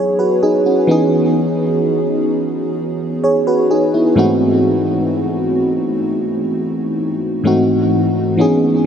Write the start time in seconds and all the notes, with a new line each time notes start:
Already playing: G#4 C#5
0.19 F#4 B4
0.43 D#4 G#4
0.66 C#4 F#4
0.87 E3 B3 C#4 D#4 G#4
3.24 G#4 C#5
3.47 F#4 B4
3.71 D#4 G#4
3.94 B3 E4
4.15 G#2 E3 A3 C4 D#4 F#4
7.44 G#2 E3 A3 C4 D#4 F#4
8.37 E3 B3 C#4 D#4 G#4